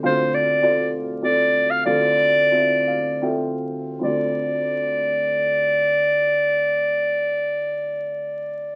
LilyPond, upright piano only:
<<
  \new Staff \with { instrumentName = "Upright piano" } { \time 3/4 \key d \minor \tempo 4 = 75 << { r2. | r4. f''8 g''4 | r2. | r2. | } \\ { <c' f' a' f''>8 r8 <c' f' a' d''>8 r8 <c' f' a' d''>8 r8 | <c' f' a' f''>8 r8 <c' f' a' e''>8 r8 <c' f' a' e''>8 r8 | <c' f' a' d''>2.~ | <c' f' a' d''>2. | } >> }
  \new Staff \with { instrumentName = "Upright piano" } { \clef bass \time 3/4 \key d \minor <d, d>2. | <d, d>2. | d,2.~ | d,2. | }
>>